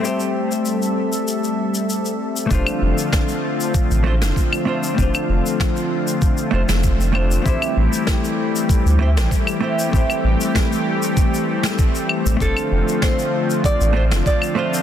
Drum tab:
SH |xx-xxx-xxx-xxx-x|xx-xxx-xxx-xxx-x|xx-xxx-xxx-xxx-x|xx-xxx-xxx-xxx-x|
CL |----------------|-x-----------x--|-x------------x-|-x-----------x--|
SD |----------------|----o------o----|----o------o----|----o------o----|
BD |----------------|o---o---o---o---|o---o---o---o---|o---o---o---o---|

SH |xx-xxx-xxx-xxx-x|xx-xxx-xxx-xxx-x|
CL |-x------------x-|-x-----------x--|
SD |----o------o----|----o------o----|
BD |o---o---o---o---|o---o---o---o---|